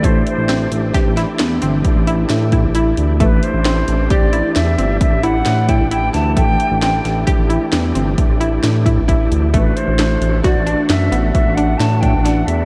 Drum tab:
HH |xxxxxxxxxxxxxx|xxxxxxxxxxxxxx|xxxxxxxxxxxxxx|xxxxxxxxxxxxxx|
SD |--o-ooo---o---|--o---o---o--o|--oo--o---o---|--o-o-o---o-o-|
BD |o---o---o--o--|o---o---o--o--|o---o---o--oo-|o---o---o--o--|